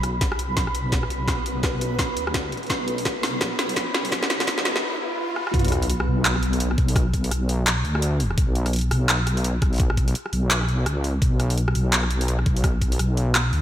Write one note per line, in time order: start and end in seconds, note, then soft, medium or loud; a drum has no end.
0.00 0.38 B1 medium
0.00 4.83 B3 medium
0.00 4.83 B4 medium
0.00 cross-stick soft
0.00 closed hi-hat medium
0.00 riser medium
0.21 kick loud
0.21 snare soft
0.21 closed hi-hat medium
0.32 cross-stick medium
0.39 1.09 B1 medium
0.39 closed hi-hat medium
0.57 kick medium
0.57 snare medium
0.57 closed hi-hat medium
0.67 cross-stick medium
0.75 closed hi-hat medium
0.92 kick medium
0.92 snare medium
0.92 closed hi-hat medium
1.03 cross-stick medium
1.10 1.62 B1 loud
1.10 closed hi-hat soft
1.28 kick loud
1.28 cross-stick medium
1.28 snare medium
1.28 closed hi-hat medium
1.46 closed hi-hat medium
1.63 2.15 B1 loud
1.63 kick loud
1.63 cross-stick medium
1.63 snare medium
1.63 closed hi-hat medium
1.81 closed hi-hat medium
1.99 kick loud
1.99 cross-stick medium
1.99 snare medium
1.99 closed hi-hat medium
2.17 2.69 D2 medium
2.17 closed hi-hat medium
2.27 cross-stick medium
2.34 kick medium
2.34 snare medium
2.34 closed hi-hat medium
2.52 closed hi-hat soft
2.57 closed hi-hat soft
2.63 closed hi-hat soft
2.67 3.22 B1 loud
2.67 kick loud
2.67 snare medium
2.67 closed hi-hat soft
2.70 closed hi-hat medium
2.88 closed hi-hat medium
2.98 open hi-hat medium
3.05 kick loud
3.05 snare medium
3.05 closed hi-hat medium
3.23 3.93 B1 loud
3.23 snare medium
3.23 open hi-hat medium
3.41 kick loud
3.41 snare medium
3.41 closed hi-hat medium
3.59 snare medium
3.59 closed hi-hat medium
3.69 open hi-hat medium
3.76 kick medium
3.76 snare medium
3.76 closed hi-hat medium
3.94 4.46 B1 medium
3.94 snare medium
3.94 closed hi-hat soft
4.05 open hi-hat medium
4.12 kick loud
4.12 snare medium
4.12 closed hi-hat medium
4.23 snare medium
4.30 snare medium
4.30 closed hi-hat medium
4.40 snare medium
4.40 open hi-hat medium
4.47 4.83 F#1 loud
4.47 kick loud
4.47 snare loud
4.47 closed hi-hat medium
4.58 snare medium
4.65 snare loud
4.65 open hi-hat medium
4.76 snare medium
5.36 cross-stick medium
5.47 cross-stick medium
5.54 6.06 B1 loud
5.54 kick loud
5.54 closed hi-hat soft
5.54 sub drop medium
5.59 closed hi-hat soft
5.65 closed hi-hat medium
5.68 cross-stick medium
5.68 closed hi-hat medium
5.72 closed hi-hat medium
5.82 open hi-hat medium
5.90 closed hi-hat medium
6.00 cross-stick medium
6.07 6.77 B1 loud
6.25 clap loud
6.25 closed hi-hat medium
6.36 cross-stick medium
6.43 closed hi-hat medium
6.53 open hi-hat medium
6.60 closed hi-hat medium
6.71 cross-stick medium
6.78 7.30 B1 loud
6.78 kick loud
6.78 closed hi-hat soft
6.88 open hi-hat medium
6.96 kick loud
6.96 cross-stick medium
6.96 closed hi-hat medium
7.14 kick medium
7.14 closed hi-hat medium
7.24 open hi-hat medium
7.31 7.84 B1 loud
7.31 cross-stick medium
7.31 closed hi-hat medium
7.49 open hi-hat medium
7.67 cross-stick medium
7.67 clap loud
7.67 closed hi-hat medium
7.85 8.37 D2 loud
7.85 open hi-hat soft
7.95 cross-stick medium
8.02 closed hi-hat medium
8.20 open hi-hat medium
8.31 cross-stick medium
8.38 8.90 B1 loud
8.38 kick loud
8.38 closed hi-hat medium
8.55 closed hi-hat medium
8.66 cross-stick soft
8.66 open hi-hat medium
8.73 closed hi-hat medium
8.76 closed hi-hat medium
8.79 closed hi-hat medium
8.81 closed hi-hat soft
8.91 9.61 B1 loud
8.91 cross-stick medium
8.91 open hi-hat medium
9.09 clap loud
9.09 closed hi-hat medium
9.27 cross-stick medium
9.27 closed hi-hat medium
9.37 open hi-hat medium
9.44 closed hi-hat medium
9.62 10.14 B1 loud
9.62 kick loud
9.62 cross-stick medium
9.62 closed hi-hat soft
9.73 open hi-hat soft
9.74 open hi-hat soft
9.76 open hi-hat soft
9.78 kick loud
9.78 closed hi-hat medium
9.78 open hi-hat medium
9.90 cross-stick medium
9.97 kick medium
9.97 closed hi-hat medium
10.08 open hi-hat medium
10.15 closed hi-hat medium
10.26 cross-stick soft
10.33 10.85 B1 loud
10.33 open hi-hat medium
10.51 clap loud
10.51 closed hi-hat medium
10.61 cross-stick soft
10.63 cross-stick soft
10.65 cross-stick soft
10.67 cross-stick soft
10.67 open hi-hat soft
10.86 11.21 C#2 loud
10.86 cross-stick medium
10.86 closed hi-hat medium
11.04 open hi-hat medium
11.22 11.74 B1 loud
11.22 kick loud
11.22 closed hi-hat medium
11.40 cross-stick soft
11.40 closed hi-hat medium
11.50 open hi-hat medium
11.58 closed hi-hat medium
11.68 cross-stick medium
11.75 12.45 B1 loud
11.75 open hi-hat medium
11.93 clap loud
11.93 closed hi-hat medium
12.03 cross-stick medium
12.11 closed hi-hat medium
12.21 open hi-hat medium
12.28 closed hi-hat medium
12.39 cross-stick medium
12.46 12.98 B1 loud
12.46 kick loud
12.46 closed hi-hat soft
12.57 open hi-hat medium
12.64 kick loud
12.64 cross-stick medium
12.64 closed hi-hat medium
12.82 kick medium
12.82 closed hi-hat medium
12.92 open hi-hat medium
12.99 13.52 B1 loud
12.99 cross-stick medium
12.99 closed hi-hat medium
13.17 open hi-hat medium
13.35 cross-stick medium
13.35 clap loud
13.35 closed hi-hat medium
13.53 13.62 D2 loud
13.53 open hi-hat soft